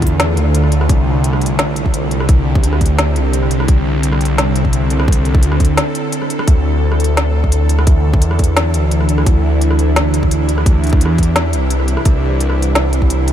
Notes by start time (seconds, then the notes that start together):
Already playing: E2 D3 A3 E4 F4
0.02 kick, closed hi-hat
0.07 closed hi-hat
0.20 snare, closed hi-hat
0.37 D2, closed hi-hat
0.55 closed hi-hat
0.64 cross-stick
0.72 D2, closed hi-hat
0.81 cross-stick
0.89 C2 C4 E4 G4, kick, closed hi-hat
1.24 closed hi-hat
1.33 cross-stick
1.41 closed hi-hat
1.46 closed hi-hat
1.59 snare, closed hi-hat
1.76 closed hi-hat
1.86 kick
1.94 closed hi-hat
2.11 closed hi-hat
2.20 cross-stick
2.29 kick, closed hi-hat
2.55 kick
2.64 D2, closed hi-hat
2.73 cross-stick
2.81 kick, closed hi-hat
2.86 closed hi-hat
2.99 snare, closed hi-hat
3.16 C2, closed hi-hat
3.33 closed hi-hat
3.43 cross-stick
3.51 C2, closed hi-hat
3.60 cross-stick
3.68 C2 A4, kick, closed hi-hat
4.03 closed hi-hat
4.12 cross-stick
4.21 closed hi-hat
4.25 closed hi-hat
4.38 snare, closed hi-hat
4.56 closed hi-hat
4.65 kick
4.73 closed hi-hat
4.90 closed hi-hat
5.00 cross-stick
5.08 kick
5.12 closed hi-hat
5.25 closed hi-hat
5.35 kick
5.43 D2, closed hi-hat
5.52 cross-stick
5.60 kick, closed hi-hat
5.65 closed hi-hat
5.77 snare, closed hi-hat
5.95 closed hi-hat
6.12 closed hi-hat
6.22 cross-stick
6.30 closed hi-hat
6.39 cross-stick
6.47 D2 E3 D4 E4, kick, closed hi-hat
6.92 cross-stick
7.00 closed hi-hat
7.04 closed hi-hat
7.17 snare, closed hi-hat
7.44 kick
7.52 closed hi-hat
7.69 closed hi-hat
7.79 cross-stick
7.87 kick, closed hi-hat
8.14 kick
8.22 E2, closed hi-hat
8.31 cross-stick
8.39 kick, closed hi-hat
8.44 closed hi-hat
8.57 snare, closed hi-hat
8.74 D2, closed hi-hat
8.91 closed hi-hat
9.01 cross-stick
9.09 D2, closed hi-hat
9.18 cross-stick
9.26 D2 G4, kick, closed hi-hat
9.61 closed hi-hat
9.71 cross-stick
9.79 closed hi-hat
9.96 snare, closed hi-hat
10.14 closed hi-hat
10.23 kick
10.31 closed hi-hat
10.49 closed hi-hat
10.58 cross-stick
10.66 kick, closed hi-hat
10.84 closed hi-hat
10.87 closed hi-hat
10.89 kick, closed hi-hat
11.01 E2, closed hi-hat
11.06 cross-stick
11.18 kick, closed hi-hat
11.23 closed hi-hat
11.36 snare, closed hi-hat
11.53 C2, closed hi-hat
11.70 closed hi-hat
11.80 cross-stick
11.88 closed hi-hat
11.97 cross-stick
12.05 C2 G3 C5, kick, closed hi-hat
12.41 closed hi-hat
12.50 cross-stick
12.62 closed hi-hat
12.75 snare, closed hi-hat
12.93 closed hi-hat
13.02 kick
13.10 closed hi-hat
13.28 closed hi-hat